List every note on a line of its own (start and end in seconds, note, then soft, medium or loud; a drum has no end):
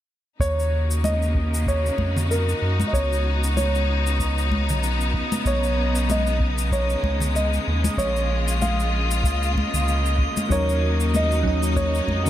0.39 1.91 D#2 medium
0.39 2.90 C#3 medium
0.39 2.90 A#3 medium
0.39 7.94 D#4 medium
0.39 5.41 F#4 medium
0.39 1.06 C#5 loud
0.39 12.30 D#5 medium
0.39 12.30 D#6 medium
0.39 kick loud
0.39 cabasa soft
0.60 cabasa soft
0.91 cabasa medium
1.04 1.63 D#5 medium
1.04 high conga medium
1.04 cabasa soft
1.22 cabasa soft
1.35 kick medium
1.54 cabasa medium
1.67 2.27 C#5 medium
1.67 kick loud
1.67 cabasa soft
1.86 cabasa soft
1.98 2.54 F2 medium
1.98 kick medium
1.98 high conga medium
2.16 low conga medium
2.16 cabasa medium
2.31 2.89 A#4 medium
2.31 cabasa soft
2.49 cabasa soft
2.62 2.84 F#2 medium
2.80 high conga medium
2.80 cabasa medium
2.87 2.93 D#5 medium
2.93 4.70 C#2 medium
2.93 12.30 C#3 medium
2.93 7.95 B3 medium
2.93 3.55 C#5 medium
2.93 kick loud
2.93 cabasa soft
3.13 cabasa soft
3.43 cabasa medium
3.57 4.79 C#5 medium
3.57 high conga medium
3.57 cabasa soft
3.75 cabasa soft
4.06 cabasa medium
4.19 kick loud
4.19 cabasa soft
4.38 cabasa soft
4.51 kick medium
4.51 high conga medium
4.69 5.23 B1 medium
4.69 low conga medium
4.69 cabasa medium
4.83 cabasa soft
5.01 cabasa soft
5.14 kick loud
5.32 high conga medium
5.32 cabasa medium
5.46 6.96 B1 medium
5.46 10.48 G#3 medium
5.46 6.12 C#5 medium
5.46 kick loud
5.46 cabasa soft
5.64 cabasa soft
5.95 cabasa medium
6.10 6.75 D#5 medium
6.10 high conga medium
6.10 cabasa soft
6.27 cabasa soft
6.40 kick medium
6.58 cabasa medium
6.72 7.32 C#5 medium
6.72 kick loud
6.72 cabasa medium
6.90 cabasa soft
7.03 7.59 C#2 medium
7.03 kick soft
7.03 high conga medium
7.20 low conga medium
7.20 cabasa medium
7.36 8.01 D#5 medium
7.36 cabasa medium
7.53 cabasa soft
7.67 7.90 D#2 medium
7.84 high conga medium
7.84 cabasa medium
7.98 9.23 A#1 medium
7.98 12.30 A#3 medium
7.98 10.49 F4 medium
7.98 8.58 C#5 medium
7.98 kick loud
7.98 cabasa soft
8.16 cabasa soft
8.48 cabasa medium
8.62 9.84 F5 medium
8.62 high conga medium
8.62 cabasa soft
8.80 cabasa soft
9.11 cabasa medium
9.24 9.64 C#2 medium
9.24 kick loud
9.24 cabasa medium
9.43 cabasa soft
9.55 kick medium
9.55 high conga medium
9.74 10.28 C#2 loud
9.74 low conga medium
9.74 cabasa medium
9.88 cabasa soft
10.06 cabasa soft
10.18 kick medium
10.37 high conga medium
10.37 cabasa medium
10.49 12.01 D#2 loud
10.49 11.41 F#3 medium
10.49 11.42 C#4 medium
10.49 12.30 D#4 medium
10.49 11.43 D#4 medium
10.49 12.30 F#4 medium
10.49 11.11 C#5 loud
10.49 kick loud
10.49 cabasa soft
10.53 11.43 A#4 medium
10.69 cabasa soft
11.00 cabasa medium
11.14 11.80 D#5 medium
11.14 high conga medium
11.14 cabasa medium
11.32 cabasa soft
11.43 12.21 F#3 medium
11.43 12.21 C#4 medium
11.43 12.22 D#4 medium
11.43 kick medium
11.48 12.23 D#5 loud
11.63 cabasa medium
11.76 12.30 C#5 medium
11.76 kick loud
11.76 cabasa soft
11.95 cabasa soft
12.08 12.30 F2 medium
12.08 kick medium
12.08 high conga medium
12.23 12.30 C#4 medium
12.23 12.30 D#4 medium
12.23 12.30 F#4 medium
12.23 low conga medium
12.23 cabasa medium